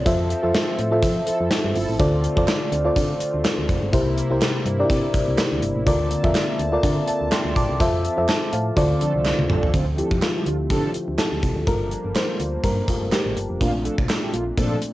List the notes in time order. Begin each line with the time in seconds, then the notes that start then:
0.06 F2 F3 C4 F4 A4 C5 E5, kick, closed hi-hat
0.30 closed hi-hat
0.43 F2 F4 A4 C5 E5
0.54 snare, closed hi-hat, tambourine
0.79 A2, closed hi-hat
0.91 F4 A4 C5 E5
1.02 F3, kick, closed hi-hat
1.27 F3 E4 A4, closed hi-hat
1.40 F2 F3 E4 A4
1.51 snare, closed hi-hat, tambourine
1.65 G2
1.75 G1 F3 E4 A4, open hi-hat
1.89 A1
1.99 D2 D3 A3 F4 A4 C5 D5, kick, closed hi-hat
2.24 closed hi-hat
2.36 F2 F4 A4 C5 D5, kick
2.48 snare, clap, closed hi-hat, tambourine
2.72 D2, closed hi-hat
2.85 F4 A4 C5 D5
2.96 D3, kick, closed hi-hat
3.20 closed hi-hat
3.34 D2
3.45 snare, clap, closed hi-hat, tambourine
3.58 D2
3.69 F1, kick, closed hi-hat
3.82 G1
3.92 C2 C3 G3 A#3 E4 G4 A#4 C5, kick, closed hi-hat
4.18 closed hi-hat
4.30 C2 E4 G4 A#4 C5
4.41 snare, clap, closed hi-hat, tambourine
4.66 G2, closed hi-hat
4.79 D4 G4 A#4 D5
4.85 E4
4.90 C3, kick, closed hi-hat
5.14 kick, closed hi-hat
5.28 C2
5.38 snare, clap, closed hi-hat, tambourine
5.52 D2
5.62 G1, closed hi-hat
5.76 A1
5.86 D2 D3 C4 F4 A4 A#4 D5 A5, kick, closed hi-hat
6.11 closed hi-hat
6.23 F2 F4 A4 A#4 E5, kick
6.35 snare, clap, closed hi-hat, tambourine
6.59 D2, closed hi-hat
6.72 F4 A4 A#4 D5
6.83 D3, kick, closed hi-hat
7.08 E5 A5, closed hi-hat
7.21 D2
7.32 G5 C6, snare, clap, closed hi-hat, tambourine
7.45 D2
7.56 A#1 A5 D6, kick, closed hi-hat
7.69 C2
7.80 F2 F3 F4 A4 C5 E5, kick, closed hi-hat
8.05 closed hi-hat
8.17 F2 F4 A4 C5 E5
8.28 E5 A5, snare, clap, closed hi-hat, tambourine
8.53 A2 C5 F5, closed hi-hat
8.76 D2 D3 A3 C4 F4 A4 C5 D5, kick, closed hi-hat
9.01 C2 F3 D4 A4, closed hi-hat
9.14 C2 F3 D4 A4
9.25 snare, clap
9.39 D2, high tom
9.50 A1 F3 D4 A4, mid tom
9.63 floor tom
9.73 D2 D3 F3 A3 C4 F4, kick, closed hi-hat
9.97 F3 C4 D4 E4 G4 A4, closed hi-hat
10.11 F2, kick
10.22 F4, snare, clap, closed hi-hat
10.36 G3 E4 G4
10.46 D2 D3 C4 F4, closed hi-hat
10.70 D3 F3 D4 G4 A4, kick, closed hi-hat
10.94 closed hi-hat
11.08 D2
11.18 F3 C4 E4 A4, snare, clap, closed hi-hat
11.32 D2
11.43 C2, kick, closed hi-hat
11.56 D2
11.67 G1 G3 A#3 D4 F4 A4 A#4, kick, closed hi-hat
11.91 closed hi-hat
12.05 G1
12.15 C5, snare, clap, closed hi-hat
12.40 D2, closed hi-hat
12.64 G2 A#4, kick, closed hi-hat
12.88 A3 A#3 F4, kick, closed hi-hat
13.01 G1
13.12 G4, snare, clap, closed hi-hat
13.26 A1
13.37 G1, closed hi-hat
13.50 F1
13.60 A#1 A#2 D3 A3 A#3 C4 D4 F4, kick, closed hi-hat
13.85 F3 D4 A4, closed hi-hat
13.98 C2, kick
14.09 snare, clap, closed hi-hat
14.22 G3 E4 G4
14.33 A#1 D3 A#3 F4, closed hi-hat
14.57 A#2 F3 A3 C4 D4 A4, kick, closed hi-hat
14.82 closed hi-hat